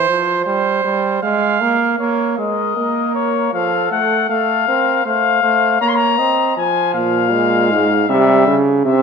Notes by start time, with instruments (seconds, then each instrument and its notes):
Already playing: trumpet C5
0.08 trombone F3
0.45 trombone G3, trumpet C5
0.84 trombone G3
1.23 trombone G#3, trumpet F5
1.61 trombone A#3
1.99 trombone A#3, trumpet C#5
2.38 trombone G#3, trumpet A#4 D#5
2.77 trombone A#3
3.15 trumpet C#5
3.53 trombone F3, trumpet A4 F5
3.91 trombone A3, trumpet F#5
4.29 trombone A3, trumpet A4 F5
4.67 trombone C4, trumpet A#4
5.05 trombone A3, trumpet C5 F5
5.43 trombone A3, trumpet C5
5.81 trombone A#3, trumpet C#5 A#5
5.88 trumpet C6
5.95 trumpet A#5
6.19 trombone C4, trumpet D#5
6.57 trombone F3, trumpet G#5
6.94 bass trombone A#2, trumpet F5
7.32 trombone G#3
7.71 bass trombone G#2
8.09 bass trombone C3, trombone G3, trumpet E5
8.47 bass trombone C#3
8.85 bass trombone C3, trombone C4, trumpet E5